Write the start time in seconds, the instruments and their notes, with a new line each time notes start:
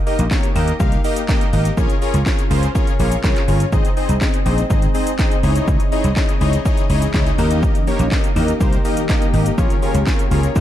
0.06 analog polysynth A#3 D#4 G4 A#4 D#5, open hi-hat, shaker
0.19 slap bass A#1, closed hi-hat, shaker
0.31 analog polysynth A#3 D#4 G4 A#4 C#5, kick, snare, clap, shaker
0.43 closed hi-hat, shaker
0.55 slap bass D#2, analog polysynth A#3 D#4 G4 A#4 D#5, open hi-hat, shaker
0.68 closed hi-hat, shaker
0.80 slap bass C2, analog polysynth A#3 D#4 G4 A#4 F5, kick, shaker
0.92 closed hi-hat, shaker
1.04 analog polysynth A#3 D#4 G4 A#4 D#5, open hi-hat, shaker
1.16 closed hi-hat, shaker
1.28 analog polysynth A#3 D#4 G4 A#4 D#5, kick, snare, clap, shaker
1.41 closed hi-hat, shaker
1.53 slap bass G#1, analog polysynth A#3 D#4 G4 A#4 D#5, open hi-hat, shaker
1.65 closed hi-hat, shaker
1.77 slap bass A#1, analog polysynth C#4 F4 G#4 A#4 C#5, kick, shaker
1.90 closed hi-hat, shaker
2.02 analog polysynth C#4 F4 G#4 A#4 C#5, open hi-hat, shaker
2.14 slap bass C#2, closed hi-hat, shaker
2.26 analog polysynth C#4 F4 G#4 A#4 C#5, kick, snare, clap, shaker
2.39 closed hi-hat, shaker
2.50 slap bass C#2, analog polysynth C#4 F4 G#4 A#4 C5, open hi-hat, shaker
2.63 closed hi-hat, shaker
2.75 analog polysynth C#4 F4 G#4 A#4 C#5, kick, shaker
2.87 closed hi-hat, shaker
2.99 slap bass A#1, analog polysynth C#4 F4 G#4 A#4 C#5, open hi-hat, shaker
3.12 closed hi-hat, shaker
3.24 slap bass C2, analog polysynth C#4 F4 G#4 A#4 C#5, kick, snare, clap, shaker
3.36 clap, closed hi-hat, shaker
3.48 slap bass G1, analog polysynth C#4 F4 G#4 A#4 C#5, open hi-hat, shaker
3.60 closed hi-hat, shaker
3.72 slap bass G#1, ambient pad G#3 C4 D#5, analog polysynth C4 D#4 G#4 C5 D#5, kick, shaker
3.85 closed hi-hat, shaker
3.97 analog polysynth C4 D#4 G#4 C5 D#5, open hi-hat, shaker
4.09 slap bass C2, closed hi-hat, shaker
4.21 analog polysynth C4 D#4 G#4 C5 D#5, kick, snare, clap, shaker
4.34 closed hi-hat, shaker
4.46 slap bass A#1, analog polysynth C4 D#4 G#4 C5 D#5, open hi-hat, shaker
4.58 closed hi-hat, shaker
4.70 slap bass G#1, analog polysynth C4 D#4 G#4 C5 D#5, kick, shaker
4.82 closed hi-hat, shaker
4.94 analog polysynth C4 D#4 G#4 C5 D#5, open hi-hat, shaker
5.07 closed hi-hat, shaker
5.19 analog polysynth C4 D#4 G#4 C5 D#5, kick, snare, clap, shaker
5.31 closed hi-hat, shaker
5.43 slap bass C#2, ambient pad E3 C#4, analog polysynth D#4 E4 G#4 C#5 D#5, open hi-hat, shaker
5.56 closed hi-hat, shaker
5.68 slap bass C#2, kick, shaker
5.80 closed hi-hat, shaker
5.92 analog polysynth D#4 E4 G#4 C#5 D#5, open hi-hat, shaker
6.04 slap bass C2, closed hi-hat, shaker
6.16 analog polysynth D#4 E4 G#4 C#5 D#5, kick, snare, clap, shaker
6.29 closed hi-hat, shaker
6.41 slap bass C#2, analog polysynth D#4 E4 G#4 C#5 D#5, open hi-hat, shaker
6.53 closed hi-hat, shaker
6.65 analog polysynth D#4 E4 G#4 C#5 D#5, kick, shaker
6.77 closed hi-hat, shaker
6.89 slap bass C#2, analog polysynth D#4 E4 G#4 C#5 D#5, open hi-hat, shaker
7.02 closed hi-hat, shaker
7.14 slap bass C#2, analog polysynth D#4 E4 G#4 C#5 D#5, kick, snare, clap, shaker
7.27 closed hi-hat, shaker
7.38 slap bass D#2, ambient pad D#3 A#3 G4, analog polysynth A#3 D#4 G4 A#4 D#5, open hi-hat, shaker
7.51 closed hi-hat, shaker
7.63 kick, shaker
7.75 closed hi-hat, shaker
7.87 analog polysynth A#3 D#4 G4 A#4 C#5, open hi-hat, shaker
7.99 slap bass A#1, closed hi-hat, shaker
8.11 analog polysynth A#3 D#4 G4 A#4 D#5, kick, snare, clap, shaker
8.24 closed hi-hat, shaker
8.36 slap bass D#2, analog polysynth A#3 D#4 G4 A#4 D#5, open hi-hat, shaker
8.48 closed hi-hat, shaker
8.60 slap bass C2, analog polysynth A#3 D#4 G4 A#4 C5, kick, shaker
8.73 closed hi-hat, shaker
8.85 analog polysynth A#3 D#4 G4 A#4 D#5, open hi-hat, shaker
8.97 closed hi-hat, shaker
9.09 analog polysynth A#3 D#4 G4 A#4 D#5, kick, snare, clap, shaker
9.22 closed hi-hat, shaker
9.33 slap bass G#1, analog polysynth A#3 D#4 G4 A#4 D#5, open hi-hat, shaker
9.46 closed hi-hat, shaker
9.58 slap bass A#1, analog polysynth C#4 F4 G#4 A#4 C#5, kick, shaker
9.70 closed hi-hat, shaker
9.82 analog polysynth C#4 F4 G#4 A#4 C#5, open hi-hat, shaker
9.94 slap bass C#2, closed hi-hat, shaker
10.06 analog polysynth C#4 F4 G#4 A#4 C#5, kick, snare, clap, shaker
10.19 closed hi-hat, shaker
10.31 slap bass C#2, analog polysynth C#4 F4 G#4 A#4 C#5, open hi-hat, shaker
10.43 closed hi-hat, shaker
10.55 slap bass D#2, analog polysynth D#4 F4 G4 A#4 D#5, kick, shaker